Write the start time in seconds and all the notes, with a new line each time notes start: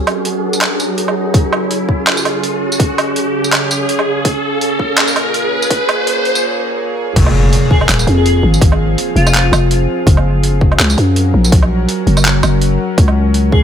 Already playing: F#3 C#4 G#4 A#4 F#5, riser
0.07 closed hi-hat, low woodblock
0.25 closed hi-hat
0.53 tambourine
0.61 clap, closed hi-hat, low woodblock
0.80 closed hi-hat, tambourine
0.98 closed hi-hat
1.08 low woodblock
1.34 C#3, kick, closed hi-hat
1.51 G#4, low woodblock
1.71 closed hi-hat
1.89 kick
2.07 clap, closed hi-hat, low woodblock
2.17 tambourine
2.25 closed hi-hat, low woodblock
2.43 F5, closed hi-hat
2.72 tambourine
2.80 kick, closed hi-hat
2.98 closed hi-hat, low woodblock
3.16 closed hi-hat
3.44 tambourine
3.53 clap, closed hi-hat, low woodblock
3.71 closed hi-hat, tambourine
3.89 closed hi-hat
3.99 low woodblock
4.25 A#2, kick, closed hi-hat
4.61 closed hi-hat
4.66 A#3
4.79 kick
4.91 C#5
4.98 clap, closed hi-hat, low woodblock
5.08 tambourine
5.16 closed hi-hat, low woodblock
5.34 closed hi-hat
5.62 tambourine
5.70 kick, closed hi-hat
5.89 closed hi-hat, low woodblock
6.07 closed hi-hat
6.25 closed hi-hat
6.35 tambourine
7.16 F1 F3, kick, closed hi-hat, crash, impact
7.26 low woodblock
7.49 C4, closed hi-hat
7.71 G#4 F5, kick
7.81 G#4, low woodblock
7.89 D#1, clap, closed hi-hat
7.99 tambourine
8.07 F2, closed hi-hat
8.17 G#4
8.26 closed hi-hat
8.43 G#1
8.54 tambourine
8.62 kick, closed hi-hat
8.72 low woodblock
8.98 closed hi-hat
9.16 F1 F4, closed hi-hat
9.27 tambourine, low woodblock
9.35 clap, closed hi-hat
9.52 F1, closed hi-hat, tambourine, low woodblock
9.71 closed hi-hat
10.06 F#1 F#3, kick, closed hi-hat
10.17 low woodblock
10.32 A#4
10.43 C#4, closed hi-hat
10.61 kick
10.72 low woodblock
10.79 C#2, clap, closed hi-hat
10.90 tambourine
10.98 F#2, closed hi-hat
11.14 F#5, closed hi-hat
11.34 A#1
11.44 tambourine
11.52 kick, closed hi-hat
11.62 low woodblock
11.89 closed hi-hat
12.07 F#1, closed hi-hat
12.17 tambourine, low woodblock
12.25 clap, closed hi-hat
12.43 F#1, closed hi-hat, tambourine, low woodblock
12.62 closed hi-hat
12.98 C#2 C#3, kick, closed hi-hat
13.08 low woodblock
13.30 G#4
13.34 closed hi-hat
13.45 F5
13.52 G#4, kick